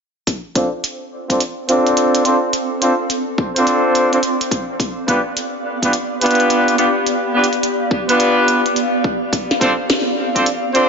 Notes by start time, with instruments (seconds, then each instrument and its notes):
0.27 ambient pad C4, kick, closed hi-hat
0.55 horn section C4 D4 F4 A4 C5, kick, closed hi-hat
0.84 closed hi-hat
1.01 ambient pad A4
1.30 horn section C4 D4 F4 A4 C5, kick, closed hi-hat
1.35 ambient pad D5
1.41 closed hi-hat
1.65 horn section C4 D4 F4 A4 C5, ambient pad F5
1.69 closed hi-hat
1.87 closed hi-hat
1.97 closed hi-hat
2.15 closed hi-hat
2.25 horn section C4 D4 F4 A4 C5, closed hi-hat
2.53 closed hi-hat
2.82 horn section C4 D4 F4 A4 C5, closed hi-hat
3.10 closed hi-hat
3.38 kick
3.56 horn section C4 D4 F4 A4 C5, closed hi-hat
3.67 closed hi-hat
3.95 closed hi-hat
4.13 horn section C4 D4 F4 A4 C5, closed hi-hat
4.23 closed hi-hat
4.41 closed hi-hat
4.51 kick, closed hi-hat
4.80 ambient pad B3, kick, closed hi-hat
5.08 horn section B3 D4 F4 G4 B4, ambient pad G4, kick, closed hi-hat
5.37 closed hi-hat
5.83 horn section B3 D4 F4 G4 B4, kick, closed hi-hat
5.93 closed hi-hat
6.21 horn section B3 D4 F4 G4 B4, closed hi-hat
6.26 closed hi-hat
6.31 closed hi-hat
6.35 closed hi-hat
6.40 closed hi-hat
6.50 closed hi-hat
6.68 closed hi-hat
6.78 horn section B3 D4 F4 G4 B4, closed hi-hat
7.07 closed hi-hat
7.34 horn section B3 D4 F4 G4 B4
7.44 closed hi-hat
7.53 closed hi-hat
7.63 closed hi-hat
7.91 kick
8.09 horn section B3 D4 F4 G4 B4, closed hi-hat
8.20 closed hi-hat
8.48 closed hi-hat
8.66 closed hi-hat
8.76 closed hi-hat
9.04 kick
9.33 ambient pad C4, kick, closed hi-hat
9.51 snare
9.61 horn section C4 D4 F4 A4 C5, kick, closed hi-hat
9.90 snare, closed hi-hat
9.98 ambient pad A4
10.36 horn section C4 D4 F4 A4 C5, kick, closed hi-hat
10.46 closed hi-hat
10.74 horn section C4 D4 F4 A4 C5, closed hi-hat